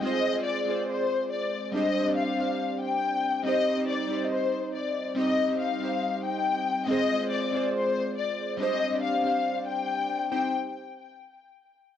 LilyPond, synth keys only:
\new Staff \with { instrumentName = "Synth keys" } { \time 4/4 \key g \phrygian \tempo 4 = 140 <aes c' f' aes' c''>8. <aes c' f' aes' c''>8. <aes c' f' aes' c''>16 <aes c' f' aes' d''>4.~ <aes c' f' aes' d''>16 r8 | <g c' d' g' c''>8. <g c' d' g' d''>8. <g c' d' g' c''>4.~ <g c' d' g' c''>16 r8. | <g c' ees' g' c''>8. <g c' ees' g' c''>8. <g c' ees' g' c''>16 <g c' ees' g' ees''>4.~ <g c' ees' g' ees''>16 r8 | <g c' ees' g' ees''>8. <g c' ees' g' c''>8. <g c' ees' g' c''>4.~ <g c' ees' g' c''>16 r8. |
<aes c' f' aes' c''>8. <aes c' f' aes' c''>8. <aes c' f' aes' c''>16 <aes c' f' aes' d''>4.~ <aes c' f' aes' d''>16 r8 | <g c' d' g' c''>8. <g c' d' g' d''>8. <g c' d' g' c''>4.~ <g c' d' g' c''>16 r8. | <c' ees' g' c''>8 r2. r8 | }